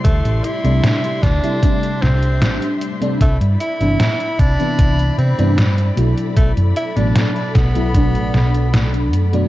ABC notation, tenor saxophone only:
X:1
M:4/4
L:1/16
Q:1/4=76
K:Bphr
V:1 name="Tenor saxophone"
A,2 E4 D4 C4 z2 | A,2 E4 D4 C4 z2 | A,2 E D3 B,8 z2 |]